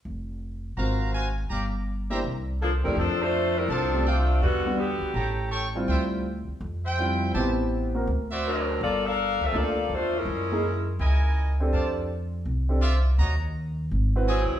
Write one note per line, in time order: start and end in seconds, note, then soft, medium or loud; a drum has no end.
0.05 0.74 F1 medium
0.77 1.47 G#1 medium
0.77 0.99 C4 soft
0.77 0.99 F4 soft
0.77 1.13 F#4 medium
0.77 0.99 F#4 soft
0.77 0.99 A#4 medium
0.77 1.13 C5 medium
0.77 1.13 F5 medium
0.77 1.13 A#5 medium
1.14 1.30 F#4 medium
1.14 1.30 C5 medium
1.14 1.30 F5 medium
1.14 1.30 G#5 medium
1.50 2.20 G1 medium
1.50 1.66 G4 medium
1.50 1.66 D5 medium
1.50 1.66 F5 medium
1.50 1.66 A#5 medium
2.10 2.22 A#3 medium
2.10 2.22 D4 medium
2.10 2.22 E4 medium
2.10 2.20 G4 medium
2.10 2.23 G4 medium
2.10 2.20 C5 medium
2.10 2.20 E5 medium
2.10 2.20 A#5 medium
2.24 2.80 C2 medium
2.62 2.72 F3 medium
2.62 2.73 A#3 medium
2.62 2.72 D4 medium
2.62 2.72 A4 medium
2.84 2.96 E2 medium
2.84 2.95 F2 medium
2.84 2.97 G3 medium
2.84 2.95 A3 medium
2.84 2.96 C4 medium
2.84 2.96 D4 medium
2.84 2.97 E4 medium
2.84 2.96 G4 medium
2.84 2.97 A#4 medium
2.96 3.66 F2 medium
2.96 3.19 F3 medium
2.96 3.20 C4 medium
2.96 3.20 D4 medium
2.96 3.20 A4 medium
3.22 3.58 A3 medium
3.22 3.58 D4 medium
3.22 3.58 F4 medium
3.22 3.58 C5 loud
3.58 3.70 G3 medium
3.58 3.70 C4 medium
3.58 3.70 E4 medium
3.58 3.71 A#4 medium
3.68 4.38 C2 medium
3.68 4.07 F3 medium
3.68 4.06 C4 medium
3.68 4.06 D4 medium
3.68 4.05 F4 medium
3.68 4.06 A4 loud
3.68 4.05 C5 medium
3.68 4.05 D5 medium
3.68 4.05 A5 medium
3.94 4.05 A3 medium
3.94 4.05 C4 medium
3.94 4.06 D4 medium
3.94 4.06 G4 medium
4.06 4.43 A3 medium
4.06 4.43 C4 medium
4.06 4.43 D4 medium
4.06 4.22 F4 medium
4.06 4.43 F4 medium
4.06 4.22 C5 medium
4.06 4.22 D5 medium
4.06 4.22 G5 medium
4.42 4.98 E2 medium
4.42 4.77 D3 medium
4.42 4.77 G3 medium
4.42 4.77 B3 medium
4.42 4.77 F#4 medium
4.65 4.77 G3 medium
4.65 4.78 B3 medium
4.65 4.78 D4 medium
4.65 4.78 F#4 medium
4.79 5.16 D3 medium
4.79 5.16 B3 medium
4.79 5.16 F#4 medium
4.79 5.76 G4 medium
5.01 muted upright bass stroke soft
5.14 5.84 A1 medium
5.14 5.51 A4 medium
5.14 5.51 C#5 medium
5.14 5.50 G5 medium
5.14 5.51 A#5 medium
5.52 5.68 A4 medium
5.52 5.68 C#5 medium
5.52 5.68 G5 medium
5.52 5.68 C#6 medium
5.75 6.22 G3 medium
5.75 6.23 C4 medium
5.75 6.23 E4 medium
5.75 6.23 F4 medium
5.88 6.44 D2 medium
5.88 6.04 F4 medium
5.88 6.04 C5 medium
5.88 6.04 E5 medium
5.88 6.04 G5 loud
6.48 muted upright bass stroke soft
6.61 7.30 F2 medium
6.85 7.32 C5 medium
6.85 7.32 E5 medium
6.85 7.32 G5 medium
6.99 7.35 G3 medium
6.99 7.35 C4 medium
6.99 7.35 E4 medium
6.99 7.36 F4 medium
7.34 8.04 A1 medium
7.34 7.90 B3 medium
7.34 7.91 C4 medium
7.34 7.91 E4 medium
7.34 7.50 G4 medium
7.34 7.91 G4 medium
7.34 7.51 C5 medium
7.34 7.50 E5 medium
7.34 7.50 A5 medium
7.94 8.06 A#3 medium
7.94 8.06 C4 medium
7.94 8.07 F#4 medium
7.94 8.07 A#4 medium
8.07 8.77 D2 medium
8.32 8.78 F#4 medium
8.32 8.78 C5 medium
8.32 8.78 D5 medium
8.32 8.78 E5 loud
8.47 8.80 F#3 medium
8.47 8.80 C4 medium
8.47 8.80 D4 medium
8.47 8.80 A#4 medium
8.81 9.37 G1 medium
8.81 9.04 A#3 medium
8.81 9.04 F4 medium
8.81 9.04 A4 medium
8.81 9.04 D5 loud
9.06 9.42 D4 medium
9.06 9.42 A4 medium
9.06 9.42 A#4 medium
9.06 9.42 F5 loud
9.40 9.52 D2 medium
9.44 9.56 C4 medium
9.44 9.56 F4 medium
9.44 9.56 A4 medium
9.44 9.56 E5 medium
9.52 9.87 D2 medium
9.52 9.75 A#3 medium
9.52 9.75 D4 medium
9.52 9.75 F4 medium
9.52 10.09 G4 medium
9.52 10.09 A4 medium
9.52 9.75 A4 medium
9.52 10.09 F5 medium
9.52 10.09 A5 medium
9.57 9.92 A#3 medium
9.57 9.92 F4 medium
9.57 9.92 A4 medium
9.57 9.92 D5 loud
9.89 10.24 E2 medium
9.95 10.16 A3 medium
9.95 10.16 D4 medium
9.95 10.16 F4 medium
9.95 10.16 C5 medium
10.18 10.89 G#3 medium
10.18 10.89 C#4 medium
10.18 10.89 E4 medium
10.18 10.89 A#4 medium
10.25 10.95 F#2 medium
10.51 10.63 A#3 medium
10.51 10.63 D#4 medium
10.51 10.63 E4 medium
10.51 10.63 G#4 medium
10.99 11.69 C#2 medium
10.99 11.55 E4 medium
10.99 11.55 A#4 medium
10.99 11.55 D#5 medium
10.99 11.55 G#5 medium
11.60 12.07 C4 medium
11.60 12.08 D4 medium
11.60 12.08 G4 medium
11.60 12.08 A4 medium
11.73 12.42 F2 medium
11.73 11.89 F4 medium
11.73 11.89 C5 medium
11.73 11.89 D5 medium
11.73 11.89 A5 medium
12.45 13.15 C2 medium
12.69 12.81 C4 medium
12.69 12.81 D4 medium
12.69 12.82 G4 medium
12.69 12.82 A4 medium
12.82 12.98 F4 medium
12.82 12.98 C5 medium
12.82 12.98 D5 medium
12.82 12.98 E5 medium
13.18 13.88 D#2 medium
13.18 13.35 F#4 medium
13.18 13.35 C#5 medium
13.18 13.35 D#5 medium
13.18 13.35 A#5 medium
13.91 14.48 G#1 medium
14.16 14.27 C4 medium
14.16 14.28 E4 medium
14.16 14.28 F#4 medium
14.16 14.28 B4 medium
14.28 14.60 F#3 medium
14.28 14.60 C4 medium
14.28 14.60 E4 medium
14.28 14.44 F#4 medium
14.28 14.60 G#4 medium
14.28 14.44 C5 medium
14.28 14.44 E5 medium
14.28 14.44 G#5 medium
14.51 muted upright bass stroke soft